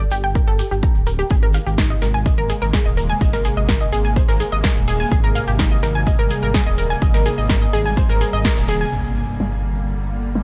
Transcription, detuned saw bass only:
0.12 0.40 G1 medium
0.48 0.62 G1 medium
0.71 0.86 G1 medium
0.95 1.23 D1 medium
1.31 1.59 G#1 loud
1.67 1.95 G#1 medium
2.02 2.30 G#1 medium
2.38 2.52 G#1 medium
2.62 2.76 G#1 medium
2.86 3.14 D#1 medium
3.21 3.49 G#1 loud
3.57 3.85 G#1 medium
3.93 4.21 G#1 medium
4.29 4.43 G#1 medium
4.52 4.66 G#1 medium
4.76 5.04 D#1 medium
5.12 5.40 G#1 loud
5.48 5.76 G#1 medium
5.83 6.11 G#1 medium
6.19 6.33 G#1 medium
6.43 6.57 G#1 medium
6.67 6.95 D#1 medium
7.02 7.30 G#1 medium
7.38 7.66 G#1 medium
7.73 8.02 G#1 medium
8.09 8.24 G#1 medium
8.33 8.47 G#1 medium
8.57 8.85 D#1 loud
8.92 10.43 G1 medium

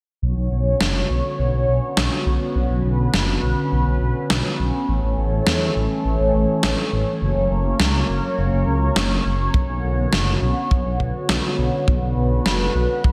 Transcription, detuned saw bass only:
0.22 0.34 B1 loud
0.37 0.48 B1 medium
0.51 0.74 B1 medium
0.81 1.04 F#1 medium
1.10 1.21 B1 medium
1.39 1.50 B1 medium
1.53 1.65 B1 medium
1.68 1.79 B1 medium
1.97 2.09 B1 medium
2.26 2.38 B1 medium
2.55 2.67 B1 loud
2.70 2.81 B1 medium
2.84 3.07 B1 medium
3.13 3.37 F#1 medium
3.43 3.54 B1 medium
3.72 3.83 B1 medium
3.86 3.98 B1 medium
4.01 4.13 B1 medium
4.30 4.42 B1 medium
4.60 4.71 B1 medium
4.88 5.00 A1 loud
5.03 5.15 A1 medium
5.18 5.41 A1 medium
5.47 5.70 E2 medium
5.76 5.87 A1 medium
6.05 6.16 A1 medium
6.20 6.31 A1 medium
6.34 6.46 A1 loud
6.63 6.75 A1 medium
6.92 7.04 A1 medium
7.21 7.33 F#1 medium
7.36 7.47 F#1 medium
7.51 7.74 F#1 medium
7.80 8.03 C#2 medium
8.09 8.20 F#1 medium
8.38 8.50 F#1 medium
8.53 8.64 F#1 medium
8.67 8.90 C#2 medium
8.96 9.19 F#1 loud
9.25 9.48 F#1 medium
9.54 9.66 B1 medium
9.69 9.80 B1 medium
9.83 10.07 B1 medium
10.13 10.36 F#1 medium
10.42 10.53 B1 medium
10.71 10.83 B1 medium
10.85 10.97 B1 medium
11.00 11.12 B1 medium
11.29 11.41 B1 medium
11.58 11.70 B1 medium
11.88 11.99 B1 loud
12.02 12.14 B1 medium
12.17 12.40 B1 medium
12.46 12.69 F#1 medium
12.75 12.86 B1 medium
13.04 13.12 B1 medium

